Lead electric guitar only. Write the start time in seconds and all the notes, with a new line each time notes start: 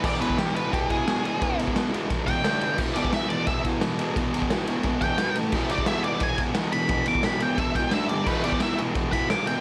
0.05 D5
0.21 B4
0.38 G4
0.55 B4
0.73 G4
0.91 G#4
2.27 G5
2.94 D5
3.13 E5
3.29 D5
3.47 E5
5.01 G5
5.71 D5
5.87 E5
6.04 D5
6.23 G#5
6.72 B5
7.08 D6
7.25 B5
7.42 G5
7.59 E5
7.75 G5
7.93 E5
8.08 D5
8.27 B4
8.44 D5
8.62 E5
9.12 B5
9.30 D6
9.47 G5